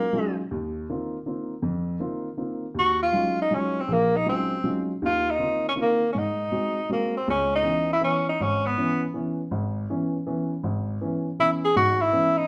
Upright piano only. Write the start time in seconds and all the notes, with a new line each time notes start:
0.13 F#3 G#3 C#4 D#4 F4
0.51 D#2
0.90 D#3 A#3 C4 F4
1.26 D#3 A#3 C4 F4
1.62 F2
2.00 D#3 A#3 C4 F4
2.37 D#3 A#3 C4 F4
2.74 D#2
3.13 F#3 G#3 C#4 D#4 F4
3.51 F#3 G#3 C#4 D#4 F4
3.88 A#1
4.26 F#3 G#3 C#4 D#4 F4
4.64 F#3 G#3 C#4 D#4 F4
5.02 D#2 D#3
5.39 D#3 A#3 C4 F4
5.76 D#3 A#3 C4 F4
6.15 G#2
6.52 G#3 C4 F#4
6.89 G#3 C4 F#4
7.28 C#2
7.63 E3 B3 C#4
8.01 E3 B3 C#4
8.40 G#1
8.77 E3 B3 C#4
9.14 E3 B3 C#4
9.51 G#1
9.90 E3 B3 C#4
10.27 E3 B3 C#4
10.63 G#1
11.01 E3 B3 C#4
11.39 E3 B3 C#4
11.76 G#1 G#2
12.13 E3 B3 C#4